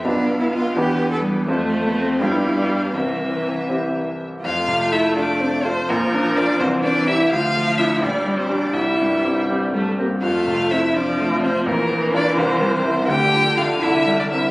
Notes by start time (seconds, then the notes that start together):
0.04 B1 B3 D4 F4 B4 F5
0.40 E4
0.51 F4
0.76 E2 B3 D4 G4 B4 D5
1.12 A4
1.24 G3
1.48 F2 A3 C4 F4 A4 C5
1.87 B3
1.99 C4
2.20 G2 G3 B3 D4 F4 G4 F5
2.31 E4
2.37 D4
2.45 E4
2.53 D4
2.62 E4
2.69 D4
2.94 C2 E3 C4 E5
3.69 C4 E4 G4
4.42 F2 A3 F4 F5
4.68 C3
4.92 E4 F4 A4 E5
5.16 D4 F4 A4 D5
5.40 C4
5.64 C4 F4 A4 C5
5.88 A#1 F3 A#3 A#4
6.14 D4
6.36 D4 F4 A#4 D5
6.60 C2 E3 C4 C5
6.83 C4 D4 D5
7.07 E4 G4 E5
7.31 D2 F3 F4 F5
7.55 A3
7.78 D4 E4 F4 E5
8.02 A#1 G3 D4 D5
8.26 G3
8.38 C4 C5
8.49 D4 G4 D5
8.73 C2 G3 E4 E5
9.01 G2
9.24 C4 G4
9.48 G3 C4 G4
9.72 G3 A3
9.98 A#3 C4 G4
10.22 F2 A3 F4 F5
10.47 C3
10.71 C4 E4 F4 E5
10.95 F3 C4 D4 F4 D5
11.19 A3
11.41 C4 F4 C5
11.64 A#1 E3 A#3 A#4
11.90 A#3
12.11 D4 F4 D5
12.35 C2 C4 C5
12.60 G3
12.84 C4 E4
13.08 D2 D3 G4 G5
13.33 F3
13.56 A3 F4 A4 F5
13.79 C2 E4 E5
14.06 G3
14.18 D4 D5
14.29 C4 E4 A#4 E5